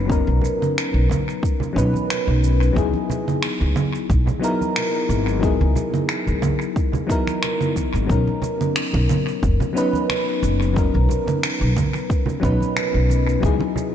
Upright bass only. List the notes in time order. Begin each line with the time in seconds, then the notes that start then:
Already playing: F#1
0.27 B1
0.94 B1
1.76 B1
2.27 B1
2.76 C#2
3.61 C#2
4.10 B1
5.09 G#1
5.61 C#2
6.27 C#2
7.94 G#1
8.09 B1
8.94 B1
9.43 F#1
10.43 F#1
10.95 B1
11.61 B1
12.43 B1
12.94 B1
13.43 C#2